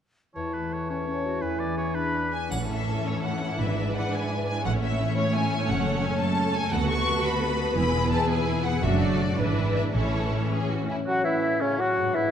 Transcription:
0.35 harp E2, bassoon E3, clarinet E4, oboe C#5, flute A5
0.54 harp A3, oboe B4
0.72 harp A4, oboe C#5
0.89 harp C#4, clarinet C#4, oboe C#5
1.07 clarinet C#4, harp C#5
1.25 clarinet F#4, harp A4
1.41 harp E2, clarinet E4, oboe B4, flute G#5
1.60 harp B3, oboe D5
1.77 harp G#4, oboe C#5
1.94 clarinet D4, harp B4, oboe B4, flute B5
2.14 harp D5
2.32 harp B4, violin section G#5
2.51 double bass section A1, harp A2, cello section A2, viola section E3 C#4, violin section E4 A4 F#5, triangle
2.70 harp E3, violin section E5
2.88 harp C#4
3.05 harp E4, violin section C#5
3.24 harp A4, violin section F#5
3.42 harp E4
3.58 double bass section G#1, cello section G#2, harp G#2, viola section D4, violin section B4 E5
3.77 harp G#3
3.95 harp D4, violin section F#5
4.13 harp E4, violin section G#5
4.30 harp B4
4.47 harp E4, violin section G#5
4.64 double bass section A1, cello section A2, harp A2, viola section A3 C#4, violin section E4 C#5 F#5
4.82 harp E3, violin section E5
4.99 harp C#4
5.16 harp E4, violin section C#5
5.34 harp A4, violin section G#5
5.51 harp E4
5.67 double bass section F#1, harp F#2, cello section F#2, violin section A4 F#5
5.85 harp C#3
6.03 harp C#4, violin section G#5
6.19 harp F#4, violin section A5
6.36 harp A4
6.54 harp F#4, violin section G#5
6.72 cello section D2, double bass section D2, harp D3, viola section B3 F#4, violin section B4 F#5
6.89 harp A3, violin section C#6
7.07 harp B3
7.24 harp F#4, violin section B5
7.42 harp A4
7.59 harp F#4
7.76 double bass section E1, cello section E2, harp E2, viola section E4, violin section G#4 B5
7.95 harp B2
8.11 harp B3, violin section A5
8.29 harp E4, violin section G#5
8.47 harp G#4
8.64 harp E4, violin section F#5
8.82 double bass section F#1, cello section F#2, harp F#2, viola section A3 D4, violin section F#4 E5
9.01 harp A3, violin section D5
9.20 harp D4 F#4
9.38 double bass section G#1, cello section G#2, harp G#2, viola section E3 D4, violin section E4 B4
9.57 harp B3
9.75 harp D4 E4, violin section E5
9.93 double bass section A1, cello section A2, harp A2, viola section E3 C#4, violin section E4 A4 C#5
10.13 harp E3
10.33 harp A3
10.51 harp C#4, violin section G#4
10.70 harp E4, violin section F#4
10.88 harp A2 C#4, violin section E4, flute G#5
10.94 harp A3
10.98 harp C#4
11.03 harp E4, oboe F#4
11.07 bassoon F#3, clarinet F#4, flute F#5
11.24 bassoon E3, oboe E4, clarinet E4, flute E5
11.61 bassoon C#3, clarinet C#4, oboe C#4, flute C#5
11.79 bassoon F#3, clarinet F#4, oboe F#4, flute F#5
11.98 harp G#2
12.02 harp B3
12.07 harp D4
12.11 harp E4, flute E5
12.15 bassoon E3, clarinet E4, oboe E4

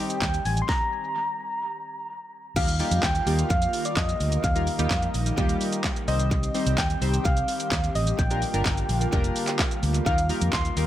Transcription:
Already playing: analog synth pad D#3 G3 C4 G4, soft synth lead G5
0.00 synth keys G3 C4 D#4 G4
0.10 closed hi-hat, shaker
0.22 fingered electric bass D#2, soft synth lead G5, kick, snare, clap, shaker
0.34 closed hi-hat, shaker
0.45 fingered electric bass A1, soft synth lead G#5, open hi-hat, shaker
0.57 closed hi-hat, shaker
0.62 soft synth lead C6
0.69 soft synth lead A#5, kick, snare
2.56 fingered electric bass D#2, analog synth pad D#3 G3 A#3 F4, synth keys G3 A#3 D#4 F4 G4, soft synth lead F5, kick, crash, shaker
2.68 closed hi-hat, shaker
2.79 synth keys G3 A#3 D#4 F4 G4, open hi-hat, shaker
2.91 fingered electric bass F2, closed hi-hat, shaker
3.03 fingered electric bass D#2, soft synth lead G5, kick, snare, clap, shaker
3.15 closed hi-hat, shaker
3.26 fingered electric bass D#2, synth keys G3 A#3 D#4 F4 G4, open hi-hat, shaker
3.39 closed hi-hat, shaker
3.50 fingered electric bass F2, soft synth lead F5, kick, shaker
3.62 closed hi-hat, shaker
3.73 open hi-hat, shaker
3.85 soft synth lead D5, closed hi-hat, shaker
3.97 fingered electric bass F2, soft synth lead D#5, kick, snare, clap, shaker
4.09 closed hi-hat, shaker
4.20 fingered electric bass D2, open hi-hat, shaker
4.32 closed hi-hat, shaker
4.44 fingered electric bass D#2, analog synth pad D#4, soft synth lead F5, kick, shaker
4.55 synth keys G3 A#3 D#4 F4 A#4, closed hi-hat, shaker
4.67 open hi-hat, shaker
4.79 fingered electric bass D#2, synth keys G3 A#3 D#4 F4 G4, closed hi-hat, shaker
4.91 fingered electric bass F2, kick, snare, clap, shaker
5.02 closed hi-hat, shaker
5.14 fingered electric bass A#1, open hi-hat, shaker
5.26 closed hi-hat, shaker
5.37 fingered electric bass D#2, synth keys G3 A#3 D#4 F4 G4, kick, shaker
5.49 closed hi-hat, shaker
5.61 open hi-hat, shaker
5.72 closed hi-hat, shaker
5.84 kick, snare, clap, shaker
5.96 closed hi-hat, shaker
6.08 fingered electric bass C2, synth keys G3 C4 D#4 G4 C5, analog synth pad C4 G4, soft synth lead D#5, open hi-hat, shaker
6.19 closed hi-hat, shaker
6.31 kick, shaker
6.43 closed hi-hat, shaker
6.54 synth keys G3 C4 D#4 G4 C5, open hi-hat, shaker
6.66 fingered electric bass C2, closed hi-hat, shaker
6.78 soft synth lead G5, kick, snare, clap, shaker
6.90 closed hi-hat, shaker
7.01 fingered electric bass C2, synth keys G3 C4 D#4 G4 C5, open hi-hat, shaker
7.14 closed hi-hat, shaker
7.25 fingered electric bass C2, soft synth lead F5, kick, shaker
7.37 closed hi-hat, shaker
7.48 open hi-hat, shaker
7.60 closed hi-hat, shaker
7.72 fingered electric bass D#2, kick, snare, clap, shaker
7.84 closed hi-hat, shaker
7.95 fingered electric bass A1, soft synth lead D#5, open hi-hat, shaker
8.07 closed hi-hat, shaker
8.19 fingered electric bass A#1, analog synth pad D3 A#3 F4, soft synth lead G5, kick, shaker
8.30 synth keys A#3 D4 F4 G4 A#4, closed hi-hat, shaker
8.42 open hi-hat, shaker
8.54 fingered electric bass G1, synth keys A#3 D4 F4 G4 A#4, closed hi-hat, shaker
8.66 kick, snare, clap, shaker
8.77 closed hi-hat, shaker
8.89 fingered electric bass A#1, open hi-hat, shaker
9.01 closed hi-hat, shaker
9.12 fingered electric bass F1, synth keys A#3 D4 F4 G4 A#4, kick, shaker
9.24 closed hi-hat, shaker
9.36 open hi-hat, shaker
9.47 clap, closed hi-hat, shaker
9.59 kick, snare, clap, shaker
9.71 closed hi-hat, shaker
9.83 fingered electric bass D2, open hi-hat, shaker
9.94 closed hi-hat, shaker
10.06 fingered electric bass D#2, analog synth pad D#3 F4, synth keys A#3 D#4 F4 G4 A#4, soft synth lead F5, kick, shaker
10.18 closed hi-hat, shaker
10.29 synth keys A#3 D#4 F4 G4 A#4, open hi-hat, shaker
10.41 fingered electric bass F2, closed hi-hat, shaker
10.53 fingered electric bass D#2, soft synth lead C6, kick, snare, clap, shaker
10.65 closed hi-hat, shaker
10.76 fingered electric bass D#2, synth keys A#3 D#4 F4 G4 A#4, open hi-hat, shaker

